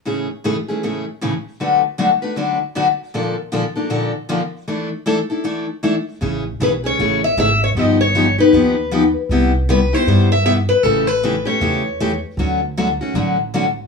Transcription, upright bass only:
X:1
M:4/4
L:1/8
Q:"Swing" 1/4=156
K:A
V:1 name="Upright bass" clef=bass
z8 | z8 | z8 | z8 |
A,,,2 B,,,2 A,,,2 G,,,2 | =G,,,4 ^D,,4 | =C,,4 =G,,4 | A,,,4 E,,4 |
D,,4 A,,,4 |]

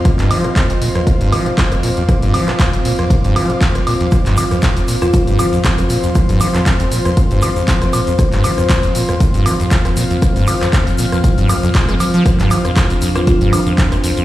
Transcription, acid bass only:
X:1
M:4/4
L:1/16
Q:"Swing 16ths" 1/4=118
K:Cm
V:1 name="Acid bass" clef=bass
F,, G,, F, F,, F,, F,, B,, F,, F,, G,, F, F,, F,, F,, B,, F,, | F,, G,, F, F,, F,, F,, B,, F,, F,, G,, F, F,, F,, F,, B,, F,, | F,, G,, F, F,, F,, F,, B,, F,, F,, G,, F, F,, F,, F,, B,, F,, | F,, G,, F, F,, F,, F,, B,, F,, F,, G,, F, F,, F,, F,, B,, F,, |
F,, G,, F, F,, F,, F,, B,, F,, F,, G,, F, F,, F,, F,, B,, F,, | F,, G,, F, F,, F,, F,, B,, F,, F,, G,, F,, F,, A,, A, F, F, | F,, G,, F, F,, F,, F,, F,, F,, F,, G,, F, F,, F,, F,, F,, F,, |]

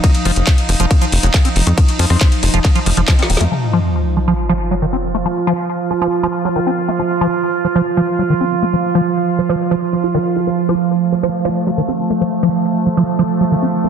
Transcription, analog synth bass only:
X:1
M:4/4
L:1/16
Q:1/4=138
K:none
V:1 name="Analog synth bass" clef=bass
z2 F,,, F,,, z2 F,,, F,,, z2 F,,, F,,, z2 F,,, F,, | z2 F,, F,, z2 F,,, F,,, z2 F,,, F,,, z2 _E,,, F,, | z16 | z16 |
z16 | z16 | z16 | z16 |]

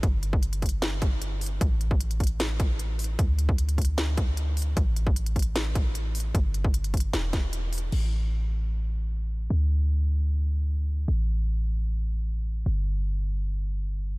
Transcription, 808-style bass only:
X:1
M:4/4
L:1/8
Q:1/4=152
K:Glyd
V:1 name="808-style bass" clef=bass
G,,,8 | A,,,8 | D,,8 | A,,,8 |
G,,,4 E,,,4 | A,,,8 | D,,8 | A,,,8 |
G,,,8 |]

